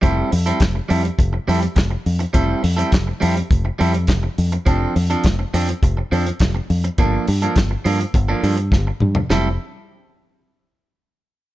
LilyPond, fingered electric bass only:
\new Staff \with { instrumentName = "Fingered electric bass" } { \clef bass \time 4/4 \key f \major \tempo 4 = 104 f,,8 f,8 f,,8 f,8 f,,8 f,8 f,,8 f,8 | f,,8 f,8 f,,8 f,8 f,,8 f,8 f,,8 f,8 | f,,8 f,8 f,,8 f,8 f,,8 f,8 f,,8 f,8 | g,,8 g,8 g,,8 g,8 g,,8 g,8 g,,8 g,8 |
f,,8 r2. r8 | }